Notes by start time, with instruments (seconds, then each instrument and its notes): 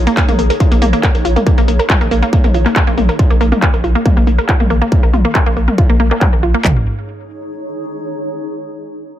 Already playing: ambient pad D#4 G#4 C#5
0.07 synth arpeggio sound A#3, closed hi-hat
0.17 synth arpeggio sound A#3, kick, clap, closed hi-hat
0.28 sub bass A#1, synth arpeggio sound A#3, closed hi-hat, mid tom
0.39 sub bass A#1, synth arpeggio sound A#3, open hi-hat
0.50 synth arpeggio sound A#4, closed hi-hat
0.60 synth arpeggio sound F4, kick, closed hi-hat
0.72 sub bass A#1, synth arpeggio sound A#3, closed hi-hat
0.82 sub bass A#1, synth arpeggio sound A#3, open hi-hat, mid tom
0.93 synth arpeggio sound A#3, closed hi-hat
1.03 synth arpeggio sound A#3, kick, clap, closed hi-hat
1.15 sub bass A#1, synth arpeggio sound A#4, closed hi-hat
1.25 sub bass A#1, synth arpeggio sound F4, open hi-hat
1.36 synth arpeggio sound A#3, closed hi-hat, mid tom
1.46 synth arpeggio sound A#3, kick, closed hi-hat
1.58 sub bass A#1, synth arpeggio sound A#3, closed hi-hat
1.68 sub bass A#1, synth arpeggio sound A#3, open hi-hat
1.79 synth arpeggio sound A#4, closed hi-hat
1.90 synth arpeggio sound F4, kick, clap, closed hi-hat, mid tom
2.01 sub bass A#1, synth arpeggio sound A#3, closed hi-hat
2.11 sub bass A#1, synth arpeggio sound A#3, open hi-hat
2.22 synth arpeggio sound A#3, closed hi-hat
2.33 synth arpeggio sound A#3, kick, closed hi-hat
2.44 sub bass A#1, synth arpeggio sound A#4, closed hi-hat, mid tom
2.54 sub bass A#1, synth arpeggio sound F4, open hi-hat
2.66 synth arpeggio sound A#3, clap, closed hi-hat
2.76 synth arpeggio sound A#3, kick, clap, closed hi-hat
2.87 sub bass A#1, synth arpeggio sound A#3, closed hi-hat
2.97 sub bass A#1, synth arpeggio sound A#3, open hi-hat, mid tom
3.09 synth arpeggio sound A#4, closed hi-hat
3.19 synth arpeggio sound F4, kick, closed hi-hat
3.30 sub bass A#1, synth arpeggio sound A#3, closed hi-hat
3.41 sub bass A#1, synth arpeggio sound A#3, open hi-hat
3.52 synth arpeggio sound A#3, closed hi-hat, mid tom
3.62 synth arpeggio sound A#3, kick, clap, closed hi-hat
3.74 sub bass A#1, synth arpeggio sound A#4, closed hi-hat
3.84 sub bass A#1, synth arpeggio sound F4, open hi-hat
3.95 synth arpeggio sound A#3, closed hi-hat
4.06 synth arpeggio sound A#3, kick, closed hi-hat, mid tom
4.17 sub bass A#1, synth arpeggio sound A#3, closed hi-hat
4.27 sub bass A#1, synth arpeggio sound A#3, open hi-hat
4.38 synth arpeggio sound A#4, closed hi-hat
4.49 synth arpeggio sound F4, kick, clap, closed hi-hat
4.60 sub bass A#1, synth arpeggio sound A#3, closed hi-hat, mid tom
4.70 sub bass A#1, synth arpeggio sound A#3, open hi-hat
4.82 synth arpeggio sound A#3, closed hi-hat
4.92 synth arpeggio sound A#3, kick, closed hi-hat
5.03 sub bass A#1, synth arpeggio sound A#4, closed hi-hat
5.13 sub bass A#1, synth arpeggio sound F4, open hi-hat, mid tom
5.25 synth arpeggio sound A#3, closed hi-hat
5.35 synth arpeggio sound A#3, kick, clap, closed hi-hat
5.46 sub bass A#1, synth arpeggio sound A#3, closed hi-hat
5.57 sub bass A#1, synth arpeggio sound A#3, open hi-hat
5.68 synth arpeggio sound A#4, closed hi-hat, mid tom
5.78 synth arpeggio sound F4, kick, closed hi-hat
5.89 sub bass A#1, synth arpeggio sound A#3, closed hi-hat
6.00 sub bass A#1, synth arpeggio sound A#3, open hi-hat
6.11 synth arpeggio sound A#3, clap, closed hi-hat
6.21 synth arpeggio sound A#3, kick, clap, mid tom
6.33 sub bass A#1, synth arpeggio sound A#4, closed hi-hat
6.43 sub bass A#1, synth arpeggio sound F4, open hi-hat
6.54 synth arpeggio sound A#3, closed hi-hat
6.64 sub bass A#1, synth arpeggio sound A#3, ambient pad D#4, kick, clap, floor tom
6.71 ambient pad G#4
6.78 ambient pad C#5